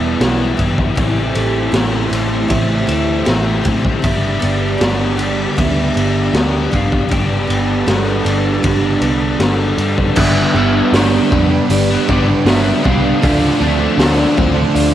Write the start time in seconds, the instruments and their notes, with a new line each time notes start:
Already playing: picked electric bass E1, overdriven electric guitar E3 G3 B3 E4, twelve-string acoustic guitar B3 D4 G4, string machine E4 D5 G5, clean electric guitar A5
0.20 picked electric bass B1, overdriven electric guitar E3 G3 B3 E4, twelve-string acoustic guitar G4, snare, ride
0.57 picked electric bass G1, twelve-string acoustic guitar D4, kick, ride
0.78 kick
0.95 picked electric bass A1, overdriven electric guitar A2 E3 A3, twelve-string acoustic guitar E3, string machine G4 C5 A5, clean electric guitar G5, kick, ride
0.99 overdriven electric guitar C4 E4
1.35 picked electric bass A1, twelve-string acoustic guitar A3, ride
1.72 picked electric bass A1, overdriven electric guitar E3 A3 C4, twelve-string acoustic guitar G4, snare, ride
1.76 overdriven electric guitar E4
2.10 picked electric bass A1, twelve-string acoustic guitar C4, ride
2.48 picked electric bass A1, overdriven electric guitar A2 E3 A3 C4 E4, twelve-string acoustic guitar E3, clean electric guitar E5, kick, ride
2.87 picked electric bass D2, twelve-string acoustic guitar A3, overdriven electric guitar A3 C4 E4, ride
3.25 picked electric bass A1, overdriven electric guitar E3 A3 C4 E4, twelve-string acoustic guitar G4, snare, ride
3.64 picked electric bass A2, twelve-string acoustic guitar C4, kick, ride
3.85 kick
4.02 picked electric bass G1, overdriven electric guitar G2 D3 G3 B3 D4, twelve-string acoustic guitar B3, string machine D5 B5, clean electric guitar E5, kick, ride
4.40 picked electric bass G1, twelve-string acoustic guitar B3, ride
4.78 picked electric bass G1, overdriven electric guitar D3 G3 B3, twelve-string acoustic guitar G4, clean electric guitar D5, snare, ride
4.82 overdriven electric guitar D4
5.17 twelve-string acoustic guitar D4, ride
5.57 picked electric bass D2, overdriven electric guitar G2 D3 G3 B3 D4, twelve-string acoustic guitar B3, clean electric guitar E5, kick, ride
5.94 picked electric bass G1, twelve-string acoustic guitar B3, overdriven electric guitar B3 D4, ride
5.98 overdriven electric guitar G3
6.33 picked electric bass D2, overdriven electric guitar D3 G3 B3 D4, twelve-string acoustic guitar G4, snare, ride
6.71 picked electric bass G1, twelve-string acoustic guitar D4, kick, ride
6.76 clean electric guitar F5
6.92 kick
7.08 picked electric bass G1, overdriven electric guitar G2 D3 G3 B3 D4, twelve-string acoustic guitar G3, string machine B4, clean electric guitar G5, kick, ride
7.13 string machine A5
7.47 picked electric bass G1, twelve-string acoustic guitar B3, ride
7.86 picked electric bass G1, overdriven electric guitar D3 G3 B3 D4, twelve-string acoustic guitar A4, snare, ride
8.24 picked electric bass G1, twelve-string acoustic guitar D4, ride
8.63 picked electric bass G1, overdriven electric guitar G2 D3 G3 B3 D4, twelve-string acoustic guitar G3, kick, ride
9.01 picked electric bass C2, overdriven electric guitar G3 B3 D4, twelve-string acoustic guitar B3, ride
9.39 picked electric bass G1, overdriven electric guitar D3 G3 B3 D4, twelve-string acoustic guitar A4, snare, ride
9.78 picked electric bass G2, twelve-string acoustic guitar D4, ride
9.98 kick
10.16 picked electric bass G1, overdriven electric guitar G2 D3 G3 B3 D4, twelve-string acoustic guitar B3, string machine D4 B4 G5, clean electric guitar E5, kick, crash
10.35 overdriven electric guitar G3 B3 D4
10.54 picked electric bass G1, overdriven electric guitar G2 D3 G3 B3 D4, twelve-string acoustic guitar B3
10.75 overdriven electric guitar G3 B3 D4
10.93 picked electric bass G1, overdriven electric guitar G2 D3 G3 B3 D4, twelve-string acoustic guitar B3, clean electric guitar D5, snare, open hi-hat
11.10 overdriven electric guitar G3 B3 D4
11.31 picked electric bass F2, overdriven electric guitar G2 D3 G3, twelve-string acoustic guitar B3, muted overdriven electric guitar stroke, kick
11.50 overdriven electric guitar G3 B3 D4, muted overdriven electric guitar stroke
11.69 picked electric bass G1, overdriven electric guitar G2 D3 G3, twelve-string acoustic guitar D4, clean electric guitar D5, open hi-hat
11.90 overdriven electric guitar G3 B3 D4
12.08 picked electric bass G1, overdriven electric guitar G2 D3 G3 B3 D4, twelve-string acoustic guitar G4, kick
12.28 muted overdriven electric guitar stroke
12.45 picked electric bass G1, overdriven electric guitar G2 D3 G3 B3, twelve-string acoustic guitar D4, snare, open hi-hat
12.49 overdriven electric guitar D4, clean electric guitar E5
12.64 overdriven electric guitar G3 B3 D4
12.83 picked electric bass C2, overdriven electric guitar G2 D3 G3 B3 D4, twelve-string acoustic guitar B3, clean electric guitar F5, kick
13.03 overdriven electric guitar G3 B3 D4
13.21 picked electric bass D2, overdriven electric guitar D3 F3 A3, twelve-string acoustic guitar F3, string machine C5 F5, kick, open hi-hat
13.25 overdriven electric guitar D4
13.41 overdriven electric guitar F3 A3 D4
13.60 picked electric bass D2, overdriven electric guitar D3 F3 A3 D4, twelve-string acoustic guitar C4
13.80 overdriven electric guitar F3 A3 D4
13.98 picked electric bass D2, overdriven electric guitar D3 F3 A3 D4, twelve-string acoustic guitar F3, snare, open hi-hat
14.16 overdriven electric guitar F3 A3 D4
14.37 picked electric bass D2, overdriven electric guitar D3 A3 D4, twelve-string acoustic guitar C4, muted overdriven electric guitar stroke, kick
14.54 overdriven electric guitar F3 A3 D4, muted overdriven electric guitar stroke
14.74 picked electric bass D2, overdriven electric guitar D3 A3 D4, twelve-string acoustic guitar D4, open hi-hat